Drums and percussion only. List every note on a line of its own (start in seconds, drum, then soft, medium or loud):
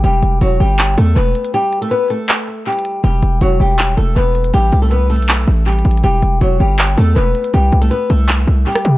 0.04 closed hi-hat medium
0.23 closed hi-hat medium
0.41 closed hi-hat medium
0.79 clap loud
0.79 closed hi-hat medium
0.98 closed hi-hat medium
1.17 closed hi-hat medium
1.35 closed hi-hat medium
1.45 closed hi-hat medium
1.54 closed hi-hat medium
1.73 closed hi-hat soft
1.73 open hi-hat medium
1.82 closed hi-hat medium
1.91 closed hi-hat medium
2.10 closed hi-hat medium
2.29 clap loud
2.29 closed hi-hat medium
2.66 closed hi-hat medium
2.73 closed hi-hat medium
2.79 closed hi-hat soft
2.85 closed hi-hat medium
3.04 closed hi-hat medium
3.23 closed hi-hat medium
3.41 closed hi-hat medium
3.79 clap loud
3.79 closed hi-hat medium
3.98 closed hi-hat medium
4.16 closed hi-hat medium
4.35 closed hi-hat medium
4.44 closed hi-hat medium
4.54 closed hi-hat medium
4.72 open hi-hat medium
4.91 closed hi-hat medium
5.10 closed hi-hat soft
5.16 closed hi-hat medium
5.22 closed hi-hat medium
5.29 clap loud
5.29 closed hi-hat medium
5.66 closed hi-hat soft
5.72 closed hi-hat medium
5.79 closed hi-hat medium
5.85 closed hi-hat medium
5.91 closed hi-hat medium
5.97 closed hi-hat medium
6.04 closed hi-hat medium
6.22 closed hi-hat medium
6.41 closed hi-hat medium
6.79 clap loud
6.79 closed hi-hat medium
6.98 closed hi-hat medium
7.16 closed hi-hat medium
7.35 closed hi-hat medium
7.44 closed hi-hat medium
7.54 closed hi-hat medium
7.72 closed hi-hat soft
7.72 open hi-hat medium
7.82 closed hi-hat medium
7.91 closed hi-hat medium
8.10 closed hi-hat medium
8.28 clap loud
8.28 closed hi-hat medium
8.66 closed hi-hat medium
8.72 cross-stick loud
8.72 closed hi-hat medium
8.79 closed hi-hat soft
8.85 closed hi-hat medium